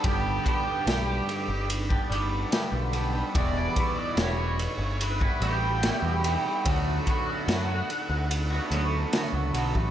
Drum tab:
RD |x-x-x-x-x-x-x-x-|x-x-x-x-x-x-x-x-|x-x-x-x-x-x-x-x-|
SD |----o-------o---|----o-------o---|----o-------o---|
BD |o-o------o------|o-o------o------|o-o------------o|